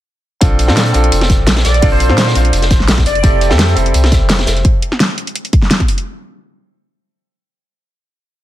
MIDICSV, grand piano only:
0, 0, Header, 1, 2, 480
1, 0, Start_track
1, 0, Key_signature, -1, "major"
1, 0, Tempo, 352941
1, 566, Time_signature, 4, 2, 24, 8
1, 11466, End_track
2, 0, Start_track
2, 0, Title_t, "Grand piano"
2, 0, Program_c, 0, 0
2, 552, Note_on_c, 0, 60, 80
2, 560, Note_on_c, 0, 62, 77
2, 567, Note_on_c, 0, 65, 75
2, 576, Note_on_c, 0, 69, 86
2, 836, Control_c, 0, 64, 127
2, 895, Note_off_c, 0, 60, 0
2, 900, Note_off_c, 0, 62, 0
2, 903, Note_off_c, 0, 65, 0
2, 908, Note_off_c, 0, 69, 0
2, 921, Note_on_c, 0, 60, 92
2, 928, Note_on_c, 0, 62, 88
2, 938, Note_on_c, 0, 65, 86
2, 946, Note_on_c, 0, 69, 98
2, 1241, Note_off_c, 0, 60, 0
2, 1256, Note_off_c, 0, 62, 0
2, 1261, Note_off_c, 0, 65, 0
2, 1262, Note_on_c, 0, 60, 76
2, 1265, Note_off_c, 0, 69, 0
2, 1278, Note_on_c, 0, 62, 70
2, 1295, Note_on_c, 0, 65, 70
2, 1312, Note_on_c, 0, 69, 86
2, 2446, Note_off_c, 0, 60, 0
2, 2454, Note_off_c, 0, 62, 0
2, 2463, Note_off_c, 0, 65, 0
2, 2471, Note_off_c, 0, 69, 0
2, 2473, Note_on_c, 0, 60, 89
2, 2482, Note_on_c, 0, 62, 79
2, 2489, Note_on_c, 0, 65, 79
2, 2499, Note_on_c, 0, 69, 96
2, 2816, Note_off_c, 0, 60, 0
2, 2821, Note_off_c, 0, 62, 0
2, 2824, Note_off_c, 0, 65, 0
2, 2829, Note_off_c, 0, 69, 0
2, 2840, Note_on_c, 0, 60, 76
2, 2849, Note_on_c, 0, 62, 71
2, 2857, Note_on_c, 0, 65, 75
2, 2866, Note_on_c, 0, 72, 82
2, 3159, Note_off_c, 0, 60, 0
2, 3177, Note_off_c, 0, 62, 0
2, 3180, Note_off_c, 0, 65, 0
2, 3180, Note_on_c, 0, 60, 79
2, 3185, Note_off_c, 0, 72, 0
2, 3197, Note_on_c, 0, 62, 72
2, 3214, Note_on_c, 0, 65, 70
2, 3229, Note_on_c, 0, 72, 88
2, 4139, Note_off_c, 0, 60, 0
2, 4148, Note_off_c, 0, 62, 0
2, 4156, Note_off_c, 0, 65, 0
2, 4164, Note_off_c, 0, 72, 0
2, 4185, Control_c, 0, 64, 0
2, 4391, Note_on_c, 0, 60, 85
2, 4399, Note_on_c, 0, 64, 77
2, 4407, Note_on_c, 0, 67, 75
2, 4415, Note_on_c, 0, 69, 85
2, 4460, Control_c, 0, 64, 127
2, 4735, Note_off_c, 0, 60, 0
2, 4739, Note_off_c, 0, 64, 0
2, 4743, Note_off_c, 0, 67, 0
2, 4747, Note_off_c, 0, 69, 0
2, 4755, Note_on_c, 0, 60, 97
2, 4763, Note_on_c, 0, 64, 84
2, 4772, Note_on_c, 0, 67, 84
2, 4780, Note_on_c, 0, 69, 107
2, 5075, Note_off_c, 0, 60, 0
2, 5093, Note_off_c, 0, 64, 0
2, 5096, Note_on_c, 0, 60, 80
2, 5098, Note_off_c, 0, 67, 0
2, 5102, Note_off_c, 0, 69, 0
2, 5114, Note_on_c, 0, 64, 68
2, 5129, Note_on_c, 0, 67, 75
2, 5146, Note_on_c, 0, 69, 83
2, 6283, Note_off_c, 0, 60, 0
2, 6292, Note_off_c, 0, 64, 0
2, 6300, Note_off_c, 0, 67, 0
2, 6309, Note_off_c, 0, 69, 0
2, 6342, Control_c, 0, 64, 0
2, 11466, End_track
0, 0, End_of_file